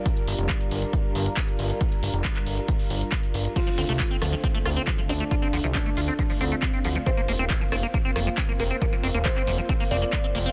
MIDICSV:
0, 0, Header, 1, 6, 480
1, 0, Start_track
1, 0, Key_signature, -2, "minor"
1, 0, Tempo, 437956
1, 62, Time_signature, 4, 2, 24, 8
1, 11533, End_track
2, 0, Start_track
2, 0, Title_t, "Felt piano"
2, 0, Program_c, 0, 0
2, 3902, Note_on_c, 0, 65, 91
2, 4526, Note_off_c, 0, 65, 0
2, 5582, Note_on_c, 0, 62, 90
2, 6206, Note_off_c, 0, 62, 0
2, 6302, Note_on_c, 0, 62, 87
2, 6926, Note_off_c, 0, 62, 0
2, 7022, Note_on_c, 0, 60, 88
2, 7646, Note_off_c, 0, 60, 0
2, 7741, Note_on_c, 0, 72, 88
2, 8366, Note_off_c, 0, 72, 0
2, 9422, Note_on_c, 0, 70, 90
2, 10046, Note_off_c, 0, 70, 0
2, 10142, Note_on_c, 0, 72, 91
2, 10766, Note_off_c, 0, 72, 0
2, 10862, Note_on_c, 0, 74, 88
2, 11486, Note_off_c, 0, 74, 0
2, 11533, End_track
3, 0, Start_track
3, 0, Title_t, "Analog synth pad"
3, 0, Program_c, 1, 89
3, 0, Note_on_c, 1, 55, 82
3, 0, Note_on_c, 1, 62, 73
3, 0, Note_on_c, 1, 65, 88
3, 0, Note_on_c, 1, 70, 86
3, 3858, Note_off_c, 1, 55, 0
3, 3858, Note_off_c, 1, 62, 0
3, 3858, Note_off_c, 1, 65, 0
3, 3859, Note_off_c, 1, 70, 0
3, 3903, Note_on_c, 1, 50, 82
3, 3903, Note_on_c, 1, 57, 75
3, 3903, Note_on_c, 1, 60, 70
3, 3903, Note_on_c, 1, 65, 87
3, 5804, Note_off_c, 1, 60, 0
3, 5823, Note_on_c, 1, 62, 70
3, 7704, Note_off_c, 1, 50, 0
3, 7704, Note_off_c, 1, 57, 0
3, 7723, Note_off_c, 1, 62, 0
3, 7742, Note_on_c, 1, 58, 83
3, 7742, Note_on_c, 1, 60, 74
3, 11533, Note_off_c, 1, 58, 0
3, 11533, Note_off_c, 1, 60, 0
3, 11533, Note_off_c, 1, 65, 0
3, 11533, End_track
4, 0, Start_track
4, 0, Title_t, "Acid bass"
4, 0, Program_c, 2, 38
4, 3902, Note_on_c, 2, 53, 78
4, 3946, Note_off_c, 2, 53, 0
4, 4022, Note_on_c, 2, 53, 76
4, 4049, Note_off_c, 2, 53, 0
4, 4142, Note_on_c, 2, 60, 99
4, 4186, Note_off_c, 2, 60, 0
4, 4262, Note_on_c, 2, 57, 96
4, 4306, Note_off_c, 2, 57, 0
4, 4382, Note_on_c, 2, 65, 78
4, 4426, Note_off_c, 2, 65, 0
4, 4501, Note_on_c, 2, 60, 100
4, 4567, Note_off_c, 2, 60, 0
4, 4622, Note_on_c, 2, 53, 75
4, 4666, Note_off_c, 2, 53, 0
4, 4742, Note_on_c, 2, 53, 72
4, 4768, Note_off_c, 2, 53, 0
4, 4862, Note_on_c, 2, 60, 98
4, 4906, Note_off_c, 2, 60, 0
4, 4982, Note_on_c, 2, 57, 103
4, 5026, Note_off_c, 2, 57, 0
4, 5102, Note_on_c, 2, 65, 74
4, 5146, Note_off_c, 2, 65, 0
4, 5222, Note_on_c, 2, 60, 90
4, 5288, Note_off_c, 2, 60, 0
4, 5342, Note_on_c, 2, 53, 77
4, 5386, Note_off_c, 2, 53, 0
4, 5462, Note_on_c, 2, 53, 76
4, 5488, Note_off_c, 2, 53, 0
4, 5582, Note_on_c, 2, 60, 100
4, 5626, Note_off_c, 2, 60, 0
4, 5702, Note_on_c, 2, 57, 96
4, 5746, Note_off_c, 2, 57, 0
4, 5822, Note_on_c, 2, 65, 85
4, 5866, Note_off_c, 2, 65, 0
4, 5942, Note_on_c, 2, 60, 101
4, 6008, Note_off_c, 2, 60, 0
4, 6062, Note_on_c, 2, 53, 76
4, 6106, Note_off_c, 2, 53, 0
4, 6182, Note_on_c, 2, 53, 74
4, 6208, Note_off_c, 2, 53, 0
4, 6302, Note_on_c, 2, 60, 97
4, 6346, Note_off_c, 2, 60, 0
4, 6422, Note_on_c, 2, 57, 103
4, 6466, Note_off_c, 2, 57, 0
4, 6542, Note_on_c, 2, 65, 75
4, 6586, Note_off_c, 2, 65, 0
4, 6662, Note_on_c, 2, 60, 97
4, 6728, Note_off_c, 2, 60, 0
4, 6782, Note_on_c, 2, 53, 75
4, 6826, Note_off_c, 2, 53, 0
4, 6902, Note_on_c, 2, 53, 75
4, 6929, Note_off_c, 2, 53, 0
4, 7023, Note_on_c, 2, 60, 103
4, 7066, Note_off_c, 2, 60, 0
4, 7143, Note_on_c, 2, 57, 95
4, 7186, Note_off_c, 2, 57, 0
4, 7263, Note_on_c, 2, 65, 78
4, 7306, Note_off_c, 2, 65, 0
4, 7383, Note_on_c, 2, 60, 99
4, 7448, Note_off_c, 2, 60, 0
4, 7503, Note_on_c, 2, 53, 75
4, 7546, Note_off_c, 2, 53, 0
4, 7623, Note_on_c, 2, 53, 75
4, 7649, Note_off_c, 2, 53, 0
4, 7742, Note_on_c, 2, 60, 104
4, 7786, Note_off_c, 2, 60, 0
4, 7862, Note_on_c, 2, 58, 99
4, 7906, Note_off_c, 2, 58, 0
4, 7983, Note_on_c, 2, 58, 78
4, 8026, Note_off_c, 2, 58, 0
4, 8102, Note_on_c, 2, 60, 104
4, 8168, Note_off_c, 2, 60, 0
4, 8222, Note_on_c, 2, 53, 83
4, 8266, Note_off_c, 2, 53, 0
4, 8342, Note_on_c, 2, 53, 78
4, 8369, Note_off_c, 2, 53, 0
4, 8462, Note_on_c, 2, 60, 100
4, 8506, Note_off_c, 2, 60, 0
4, 8582, Note_on_c, 2, 58, 103
4, 8626, Note_off_c, 2, 58, 0
4, 8702, Note_on_c, 2, 58, 74
4, 8746, Note_off_c, 2, 58, 0
4, 8822, Note_on_c, 2, 60, 99
4, 8888, Note_off_c, 2, 60, 0
4, 8942, Note_on_c, 2, 53, 76
4, 8986, Note_off_c, 2, 53, 0
4, 9062, Note_on_c, 2, 53, 72
4, 9089, Note_off_c, 2, 53, 0
4, 9182, Note_on_c, 2, 60, 95
4, 9226, Note_off_c, 2, 60, 0
4, 9302, Note_on_c, 2, 58, 100
4, 9346, Note_off_c, 2, 58, 0
4, 9422, Note_on_c, 2, 58, 72
4, 9466, Note_off_c, 2, 58, 0
4, 9542, Note_on_c, 2, 60, 95
4, 9608, Note_off_c, 2, 60, 0
4, 9662, Note_on_c, 2, 53, 82
4, 9706, Note_off_c, 2, 53, 0
4, 9782, Note_on_c, 2, 53, 74
4, 9808, Note_off_c, 2, 53, 0
4, 9902, Note_on_c, 2, 60, 106
4, 9946, Note_off_c, 2, 60, 0
4, 10022, Note_on_c, 2, 58, 103
4, 10066, Note_off_c, 2, 58, 0
4, 10142, Note_on_c, 2, 58, 78
4, 10186, Note_off_c, 2, 58, 0
4, 10262, Note_on_c, 2, 60, 107
4, 10328, Note_off_c, 2, 60, 0
4, 10382, Note_on_c, 2, 53, 74
4, 10426, Note_off_c, 2, 53, 0
4, 10502, Note_on_c, 2, 53, 75
4, 10529, Note_off_c, 2, 53, 0
4, 10622, Note_on_c, 2, 60, 95
4, 10666, Note_off_c, 2, 60, 0
4, 10743, Note_on_c, 2, 58, 99
4, 10786, Note_off_c, 2, 58, 0
4, 10862, Note_on_c, 2, 60, 77
4, 10928, Note_off_c, 2, 60, 0
4, 10983, Note_on_c, 2, 58, 70
4, 11009, Note_off_c, 2, 58, 0
4, 11102, Note_on_c, 2, 58, 77
4, 11168, Note_off_c, 2, 58, 0
4, 11222, Note_on_c, 2, 60, 102
4, 11249, Note_off_c, 2, 60, 0
4, 11342, Note_on_c, 2, 58, 73
4, 11386, Note_off_c, 2, 58, 0
4, 11463, Note_on_c, 2, 60, 74
4, 11506, Note_off_c, 2, 60, 0
4, 11533, End_track
5, 0, Start_track
5, 0, Title_t, "Analog synth bass"
5, 0, Program_c, 3, 38
5, 302, Note_on_c, 3, 31, 97
5, 374, Note_off_c, 3, 31, 0
5, 422, Note_on_c, 3, 29, 81
5, 566, Note_off_c, 3, 29, 0
5, 782, Note_on_c, 3, 31, 85
5, 926, Note_off_c, 3, 31, 0
5, 1262, Note_on_c, 3, 31, 98
5, 1406, Note_off_c, 3, 31, 0
5, 1742, Note_on_c, 3, 31, 85
5, 1887, Note_off_c, 3, 31, 0
5, 2222, Note_on_c, 3, 31, 89
5, 2294, Note_off_c, 3, 31, 0
5, 2342, Note_on_c, 3, 29, 86
5, 2486, Note_off_c, 3, 29, 0
5, 2702, Note_on_c, 3, 31, 79
5, 2847, Note_off_c, 3, 31, 0
5, 3182, Note_on_c, 3, 31, 83
5, 3327, Note_off_c, 3, 31, 0
5, 3662, Note_on_c, 3, 31, 90
5, 3807, Note_off_c, 3, 31, 0
5, 4143, Note_on_c, 3, 38, 96
5, 4215, Note_off_c, 3, 38, 0
5, 4262, Note_on_c, 3, 36, 85
5, 4406, Note_off_c, 3, 36, 0
5, 4622, Note_on_c, 3, 38, 84
5, 4766, Note_off_c, 3, 38, 0
5, 5102, Note_on_c, 3, 38, 101
5, 5246, Note_off_c, 3, 38, 0
5, 5582, Note_on_c, 3, 38, 85
5, 5726, Note_off_c, 3, 38, 0
5, 6062, Note_on_c, 3, 38, 91
5, 6134, Note_off_c, 3, 38, 0
5, 6182, Note_on_c, 3, 36, 78
5, 6326, Note_off_c, 3, 36, 0
5, 6542, Note_on_c, 3, 38, 86
5, 6686, Note_off_c, 3, 38, 0
5, 7022, Note_on_c, 3, 38, 101
5, 7166, Note_off_c, 3, 38, 0
5, 7502, Note_on_c, 3, 38, 90
5, 7647, Note_off_c, 3, 38, 0
5, 7982, Note_on_c, 3, 29, 97
5, 8055, Note_off_c, 3, 29, 0
5, 8103, Note_on_c, 3, 27, 77
5, 8247, Note_off_c, 3, 27, 0
5, 8463, Note_on_c, 3, 29, 81
5, 8607, Note_off_c, 3, 29, 0
5, 8942, Note_on_c, 3, 29, 102
5, 9087, Note_off_c, 3, 29, 0
5, 9422, Note_on_c, 3, 29, 86
5, 9567, Note_off_c, 3, 29, 0
5, 9902, Note_on_c, 3, 29, 98
5, 9974, Note_off_c, 3, 29, 0
5, 10022, Note_on_c, 3, 27, 79
5, 10166, Note_off_c, 3, 27, 0
5, 10382, Note_on_c, 3, 29, 82
5, 10526, Note_off_c, 3, 29, 0
5, 10862, Note_on_c, 3, 29, 101
5, 11006, Note_off_c, 3, 29, 0
5, 11342, Note_on_c, 3, 29, 85
5, 11486, Note_off_c, 3, 29, 0
5, 11533, End_track
6, 0, Start_track
6, 0, Title_t, "Drums"
6, 62, Note_on_c, 9, 36, 104
6, 62, Note_on_c, 9, 42, 76
6, 172, Note_off_c, 9, 36, 0
6, 172, Note_off_c, 9, 42, 0
6, 182, Note_on_c, 9, 42, 35
6, 292, Note_off_c, 9, 42, 0
6, 302, Note_on_c, 9, 46, 98
6, 411, Note_off_c, 9, 46, 0
6, 422, Note_on_c, 9, 42, 52
6, 532, Note_off_c, 9, 42, 0
6, 542, Note_on_c, 9, 36, 111
6, 542, Note_on_c, 9, 39, 106
6, 542, Note_on_c, 9, 42, 75
6, 652, Note_off_c, 9, 36, 0
6, 652, Note_off_c, 9, 39, 0
6, 652, Note_off_c, 9, 42, 0
6, 662, Note_on_c, 9, 42, 38
6, 772, Note_off_c, 9, 42, 0
6, 782, Note_on_c, 9, 46, 101
6, 891, Note_off_c, 9, 46, 0
6, 901, Note_on_c, 9, 42, 52
6, 1011, Note_off_c, 9, 42, 0
6, 1022, Note_on_c, 9, 36, 101
6, 1022, Note_on_c, 9, 42, 79
6, 1131, Note_off_c, 9, 42, 0
6, 1132, Note_off_c, 9, 36, 0
6, 1262, Note_on_c, 9, 46, 95
6, 1372, Note_off_c, 9, 46, 0
6, 1383, Note_on_c, 9, 42, 56
6, 1492, Note_off_c, 9, 42, 0
6, 1502, Note_on_c, 9, 36, 101
6, 1502, Note_on_c, 9, 39, 105
6, 1502, Note_on_c, 9, 42, 74
6, 1611, Note_off_c, 9, 36, 0
6, 1612, Note_off_c, 9, 39, 0
6, 1612, Note_off_c, 9, 42, 0
6, 1622, Note_on_c, 9, 42, 37
6, 1731, Note_off_c, 9, 42, 0
6, 1742, Note_on_c, 9, 46, 88
6, 1851, Note_off_c, 9, 46, 0
6, 1862, Note_on_c, 9, 42, 52
6, 1971, Note_off_c, 9, 42, 0
6, 1981, Note_on_c, 9, 42, 78
6, 1982, Note_on_c, 9, 36, 104
6, 2091, Note_off_c, 9, 36, 0
6, 2091, Note_off_c, 9, 42, 0
6, 2102, Note_on_c, 9, 42, 36
6, 2211, Note_off_c, 9, 42, 0
6, 2222, Note_on_c, 9, 46, 97
6, 2331, Note_off_c, 9, 46, 0
6, 2342, Note_on_c, 9, 42, 50
6, 2451, Note_off_c, 9, 42, 0
6, 2462, Note_on_c, 9, 36, 108
6, 2462, Note_on_c, 9, 39, 116
6, 2462, Note_on_c, 9, 42, 75
6, 2572, Note_off_c, 9, 36, 0
6, 2572, Note_off_c, 9, 39, 0
6, 2572, Note_off_c, 9, 42, 0
6, 2582, Note_on_c, 9, 39, 36
6, 2582, Note_on_c, 9, 42, 38
6, 2692, Note_off_c, 9, 39, 0
6, 2692, Note_off_c, 9, 42, 0
6, 2702, Note_on_c, 9, 46, 97
6, 2811, Note_off_c, 9, 46, 0
6, 2822, Note_on_c, 9, 42, 50
6, 2932, Note_off_c, 9, 42, 0
6, 2942, Note_on_c, 9, 36, 102
6, 2942, Note_on_c, 9, 42, 81
6, 3051, Note_off_c, 9, 42, 0
6, 3052, Note_off_c, 9, 36, 0
6, 3062, Note_on_c, 9, 46, 53
6, 3172, Note_off_c, 9, 46, 0
6, 3182, Note_on_c, 9, 46, 99
6, 3292, Note_off_c, 9, 46, 0
6, 3302, Note_on_c, 9, 42, 53
6, 3412, Note_off_c, 9, 42, 0
6, 3422, Note_on_c, 9, 36, 109
6, 3422, Note_on_c, 9, 39, 102
6, 3422, Note_on_c, 9, 42, 76
6, 3532, Note_off_c, 9, 36, 0
6, 3532, Note_off_c, 9, 39, 0
6, 3532, Note_off_c, 9, 42, 0
6, 3542, Note_on_c, 9, 42, 37
6, 3652, Note_off_c, 9, 42, 0
6, 3662, Note_on_c, 9, 46, 99
6, 3772, Note_off_c, 9, 46, 0
6, 3782, Note_on_c, 9, 42, 52
6, 3892, Note_off_c, 9, 42, 0
6, 3902, Note_on_c, 9, 36, 110
6, 3902, Note_on_c, 9, 42, 82
6, 3902, Note_on_c, 9, 49, 73
6, 4012, Note_off_c, 9, 36, 0
6, 4012, Note_off_c, 9, 42, 0
6, 4012, Note_off_c, 9, 49, 0
6, 4022, Note_on_c, 9, 42, 37
6, 4132, Note_off_c, 9, 42, 0
6, 4142, Note_on_c, 9, 46, 101
6, 4252, Note_off_c, 9, 46, 0
6, 4262, Note_on_c, 9, 42, 53
6, 4372, Note_off_c, 9, 42, 0
6, 4382, Note_on_c, 9, 36, 115
6, 4382, Note_on_c, 9, 39, 112
6, 4382, Note_on_c, 9, 42, 80
6, 4491, Note_off_c, 9, 39, 0
6, 4491, Note_off_c, 9, 42, 0
6, 4492, Note_off_c, 9, 36, 0
6, 4502, Note_on_c, 9, 42, 37
6, 4612, Note_off_c, 9, 42, 0
6, 4622, Note_on_c, 9, 37, 79
6, 4622, Note_on_c, 9, 46, 102
6, 4731, Note_off_c, 9, 37, 0
6, 4731, Note_off_c, 9, 46, 0
6, 4742, Note_on_c, 9, 42, 51
6, 4852, Note_off_c, 9, 42, 0
6, 4862, Note_on_c, 9, 36, 106
6, 4862, Note_on_c, 9, 42, 77
6, 4972, Note_off_c, 9, 36, 0
6, 4972, Note_off_c, 9, 42, 0
6, 5102, Note_on_c, 9, 37, 75
6, 5102, Note_on_c, 9, 46, 103
6, 5212, Note_off_c, 9, 37, 0
6, 5212, Note_off_c, 9, 46, 0
6, 5222, Note_on_c, 9, 42, 53
6, 5332, Note_off_c, 9, 42, 0
6, 5342, Note_on_c, 9, 36, 107
6, 5342, Note_on_c, 9, 39, 106
6, 5342, Note_on_c, 9, 42, 76
6, 5452, Note_off_c, 9, 36, 0
6, 5452, Note_off_c, 9, 39, 0
6, 5452, Note_off_c, 9, 42, 0
6, 5462, Note_on_c, 9, 42, 36
6, 5572, Note_off_c, 9, 42, 0
6, 5582, Note_on_c, 9, 46, 98
6, 5691, Note_off_c, 9, 46, 0
6, 5702, Note_on_c, 9, 42, 52
6, 5812, Note_off_c, 9, 42, 0
6, 5822, Note_on_c, 9, 36, 119
6, 5822, Note_on_c, 9, 42, 71
6, 5932, Note_off_c, 9, 36, 0
6, 5932, Note_off_c, 9, 42, 0
6, 5943, Note_on_c, 9, 42, 35
6, 6052, Note_off_c, 9, 42, 0
6, 6063, Note_on_c, 9, 46, 103
6, 6172, Note_off_c, 9, 46, 0
6, 6182, Note_on_c, 9, 42, 51
6, 6292, Note_off_c, 9, 42, 0
6, 6302, Note_on_c, 9, 36, 116
6, 6303, Note_on_c, 9, 39, 116
6, 6303, Note_on_c, 9, 42, 76
6, 6412, Note_off_c, 9, 36, 0
6, 6412, Note_off_c, 9, 39, 0
6, 6412, Note_off_c, 9, 42, 0
6, 6422, Note_on_c, 9, 42, 37
6, 6532, Note_off_c, 9, 42, 0
6, 6542, Note_on_c, 9, 46, 112
6, 6652, Note_off_c, 9, 46, 0
6, 6662, Note_on_c, 9, 42, 51
6, 6772, Note_off_c, 9, 42, 0
6, 6782, Note_on_c, 9, 36, 113
6, 6782, Note_on_c, 9, 42, 77
6, 6892, Note_off_c, 9, 36, 0
6, 6892, Note_off_c, 9, 42, 0
6, 6902, Note_on_c, 9, 46, 60
6, 7012, Note_off_c, 9, 46, 0
6, 7022, Note_on_c, 9, 46, 101
6, 7132, Note_off_c, 9, 46, 0
6, 7142, Note_on_c, 9, 42, 53
6, 7252, Note_off_c, 9, 42, 0
6, 7262, Note_on_c, 9, 36, 120
6, 7262, Note_on_c, 9, 39, 118
6, 7262, Note_on_c, 9, 42, 71
6, 7371, Note_off_c, 9, 39, 0
6, 7371, Note_off_c, 9, 42, 0
6, 7372, Note_off_c, 9, 36, 0
6, 7382, Note_on_c, 9, 42, 33
6, 7492, Note_off_c, 9, 42, 0
6, 7502, Note_on_c, 9, 46, 104
6, 7612, Note_off_c, 9, 46, 0
6, 7622, Note_on_c, 9, 42, 53
6, 7732, Note_off_c, 9, 42, 0
6, 7742, Note_on_c, 9, 36, 113
6, 7742, Note_on_c, 9, 42, 78
6, 7852, Note_off_c, 9, 36, 0
6, 7852, Note_off_c, 9, 42, 0
6, 7863, Note_on_c, 9, 42, 35
6, 7972, Note_off_c, 9, 42, 0
6, 7983, Note_on_c, 9, 46, 104
6, 8092, Note_off_c, 9, 46, 0
6, 8103, Note_on_c, 9, 42, 48
6, 8212, Note_off_c, 9, 42, 0
6, 8222, Note_on_c, 9, 36, 121
6, 8222, Note_on_c, 9, 39, 114
6, 8222, Note_on_c, 9, 42, 71
6, 8332, Note_off_c, 9, 36, 0
6, 8332, Note_off_c, 9, 39, 0
6, 8332, Note_off_c, 9, 42, 0
6, 8343, Note_on_c, 9, 42, 35
6, 8452, Note_off_c, 9, 42, 0
6, 8462, Note_on_c, 9, 37, 86
6, 8462, Note_on_c, 9, 46, 116
6, 8572, Note_off_c, 9, 37, 0
6, 8572, Note_off_c, 9, 46, 0
6, 8582, Note_on_c, 9, 42, 49
6, 8692, Note_off_c, 9, 42, 0
6, 8702, Note_on_c, 9, 36, 109
6, 8702, Note_on_c, 9, 42, 73
6, 8811, Note_off_c, 9, 42, 0
6, 8812, Note_off_c, 9, 36, 0
6, 8942, Note_on_c, 9, 37, 76
6, 8942, Note_on_c, 9, 46, 114
6, 9051, Note_off_c, 9, 37, 0
6, 9051, Note_off_c, 9, 46, 0
6, 9181, Note_on_c, 9, 39, 108
6, 9181, Note_on_c, 9, 42, 70
6, 9182, Note_on_c, 9, 36, 119
6, 9291, Note_off_c, 9, 39, 0
6, 9291, Note_off_c, 9, 42, 0
6, 9292, Note_off_c, 9, 36, 0
6, 9302, Note_on_c, 9, 42, 34
6, 9411, Note_off_c, 9, 42, 0
6, 9422, Note_on_c, 9, 46, 105
6, 9531, Note_off_c, 9, 46, 0
6, 9542, Note_on_c, 9, 42, 49
6, 9651, Note_off_c, 9, 42, 0
6, 9662, Note_on_c, 9, 36, 118
6, 9662, Note_on_c, 9, 42, 72
6, 9772, Note_off_c, 9, 36, 0
6, 9772, Note_off_c, 9, 42, 0
6, 9782, Note_on_c, 9, 42, 33
6, 9892, Note_off_c, 9, 42, 0
6, 9902, Note_on_c, 9, 46, 102
6, 10012, Note_off_c, 9, 46, 0
6, 10022, Note_on_c, 9, 42, 48
6, 10132, Note_off_c, 9, 42, 0
6, 10142, Note_on_c, 9, 36, 117
6, 10142, Note_on_c, 9, 39, 111
6, 10142, Note_on_c, 9, 42, 71
6, 10252, Note_off_c, 9, 36, 0
6, 10252, Note_off_c, 9, 39, 0
6, 10252, Note_off_c, 9, 42, 0
6, 10262, Note_on_c, 9, 39, 35
6, 10262, Note_on_c, 9, 42, 34
6, 10372, Note_off_c, 9, 39, 0
6, 10372, Note_off_c, 9, 42, 0
6, 10382, Note_on_c, 9, 46, 107
6, 10492, Note_off_c, 9, 46, 0
6, 10502, Note_on_c, 9, 42, 50
6, 10612, Note_off_c, 9, 42, 0
6, 10622, Note_on_c, 9, 36, 116
6, 10622, Note_on_c, 9, 42, 73
6, 10732, Note_off_c, 9, 36, 0
6, 10732, Note_off_c, 9, 42, 0
6, 10742, Note_on_c, 9, 46, 62
6, 10852, Note_off_c, 9, 46, 0
6, 10862, Note_on_c, 9, 46, 107
6, 10971, Note_off_c, 9, 46, 0
6, 10982, Note_on_c, 9, 42, 50
6, 11092, Note_off_c, 9, 42, 0
6, 11102, Note_on_c, 9, 36, 116
6, 11102, Note_on_c, 9, 39, 108
6, 11102, Note_on_c, 9, 42, 71
6, 11211, Note_off_c, 9, 39, 0
6, 11211, Note_off_c, 9, 42, 0
6, 11212, Note_off_c, 9, 36, 0
6, 11222, Note_on_c, 9, 42, 34
6, 11331, Note_off_c, 9, 42, 0
6, 11342, Note_on_c, 9, 46, 103
6, 11451, Note_off_c, 9, 46, 0
6, 11462, Note_on_c, 9, 42, 49
6, 11533, Note_off_c, 9, 42, 0
6, 11533, End_track
0, 0, End_of_file